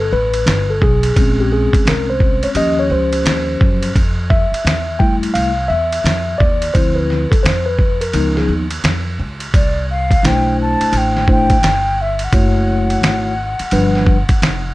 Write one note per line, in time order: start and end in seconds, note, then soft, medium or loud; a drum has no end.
0.00 0.10 G1 medium
0.00 0.11 A4 medium
0.12 0.45 A1 medium
0.12 0.71 B4 medium
0.34 ride medium
0.46 0.80 G1 medium
0.46 snare loud
0.46 hi-hat pedal soft
0.46 ride medium
0.70 0.83 A4 medium
0.82 1.15 B1 medium
0.82 1.41 G#4 medium
0.82 kick medium
1.03 ride medium
1.16 1.71 A#1 medium
1.16 2.52 G#3 medium
1.16 2.53 C4 medium
1.16 2.52 C#4 medium
1.16 kick loud
1.16 ride medium
1.40 1.53 G4 medium
1.53 1.88 G#4 medium
1.73 muted upright bass stroke soft
1.73 kick medium
1.73 ride medium
1.86 2.40 C2 medium
1.86 2.10 A#4 medium
1.86 snare loud
1.86 hi-hat pedal soft
1.86 ride medium
2.10 2.45 C5 medium
2.20 kick loud
2.43 2.49 C#5 medium
2.43 muted upright bass stroke medium
2.43 ride medium
2.55 2.89 D#2 loud
2.55 3.91 F3 medium
2.55 3.92 C#4 medium
2.55 3.91 G4 medium
2.55 2.79 D#5 loud
2.55 ride medium
2.79 2.92 C#5 medium
2.90 3.24 C#2 medium
2.90 3.92 C5 medium
3.13 ride medium
3.25 3.58 D#2 medium
3.25 snare loud
3.25 hi-hat pedal soft
3.25 ride medium
3.61 3.94 F#2 medium
3.61 kick loud
3.83 ride medium
3.96 4.50 F2 loud
3.96 kick loud
3.96 ride medium
4.30 5.02 E5 loud
4.30 kick loud
4.52 muted upright bass stroke soft
4.52 ride medium
4.65 5.19 E2 medium
4.65 snare loud
4.65 hi-hat pedal soft
4.65 ride medium
4.99 5.50 G3 medium
4.99 5.50 A3 medium
4.99 5.50 E4 medium
4.99 5.15 G5 loud
4.99 kick loud
5.22 muted upright bass stroke soft
5.22 ride medium
5.34 5.68 C2 medium
5.34 5.70 F5 loud
5.34 ride medium
5.68 6.03 E2 medium
5.68 6.41 E5 loud
5.92 ride medium
6.04 6.38 F2 medium
6.04 snare loud
6.04 hi-hat pedal soft
6.04 ride medium
6.38 6.73 D#2 medium
6.38 6.75 D5 loud
6.38 kick medium
6.62 ride medium
6.74 7.29 D2 loud
6.74 7.25 F3 medium
6.74 7.25 C4 medium
6.74 7.26 E4 medium
6.74 6.97 C5 loud
6.74 kick loud
6.74 ride medium
6.95 7.32 B4 medium
7.10 snare soft
7.31 7.44 A4 medium
7.31 muted upright bass stroke soft
7.31 kick medium
7.31 ride medium
7.43 8.11 F2 medium
7.43 7.67 C5 medium
7.43 snare loud
7.43 hi-hat pedal soft
7.43 ride medium
7.66 8.02 B4 medium
7.79 kick medium
8.01 8.37 A#4 medium
8.01 ride medium
8.13 8.47 C#2 loud
8.13 8.64 F3 medium
8.13 8.65 B3 medium
8.13 8.65 D#4 medium
8.13 ride medium
8.37 8.53 G#4 medium
8.37 snare soft
8.49 8.82 D#2 medium
8.71 ride medium
8.84 9.17 F2 medium
8.84 snare loud
8.84 hi-hat pedal soft
8.84 ride medium
9.19 9.52 C#2 medium
9.40 ride medium
9.54 10.20 C2 medium
9.54 9.87 D5 medium
9.54 kick loud
9.54 ride medium
9.90 10.28 F5 medium
10.11 kick medium
10.11 ride medium
10.23 10.78 B1 medium
10.23 11.23 A3 medium
10.23 11.24 D4 medium
10.23 11.24 E4 medium
10.23 11.24 C5 medium
10.23 10.60 G5 medium
10.23 snare loud
10.23 hi-hat pedal soft
10.23 ride medium
10.62 10.99 A5 medium
10.81 muted upright bass stroke soft
10.81 ride medium
10.92 11.59 A1 medium
10.92 ride medium
10.98 11.30 G5 loud
11.17 snare soft
11.28 11.55 A3 medium
11.28 11.55 D4 medium
11.28 11.56 E4 medium
11.28 11.56 C5 medium
11.28 kick medium
11.32 12.03 G5 loud
11.50 kick medium
11.50 ride medium
11.62 12.29 G1 medium
11.62 snare loud
11.62 hi-hat pedal soft
11.62 ride medium
12.02 12.26 E5 medium
12.19 ride medium
12.24 14.74 F#5 medium
12.33 12.99 F#1 loud
12.33 13.32 A3 medium
12.33 13.32 E4 medium
12.33 13.33 F#4 medium
12.33 13.33 C#5 medium
12.33 kick loud
12.33 ride medium
12.90 ride medium
13.02 13.57 G#1 medium
13.02 snare loud
13.02 hi-hat pedal soft
13.02 ride medium
13.59 muted upright bass stroke soft
13.59 ride medium
13.71 14.26 G1 loud
13.71 14.16 F3 medium
13.71 14.16 G3 medium
13.71 14.16 D4 medium
13.71 14.16 B4 medium
13.71 ride medium
13.95 snare soft
14.07 kick medium
14.29 muted upright bass stroke soft
14.29 kick medium
14.29 ride medium
14.42 14.74 F1 medium
14.42 snare loud
14.42 hi-hat pedal soft
14.42 ride medium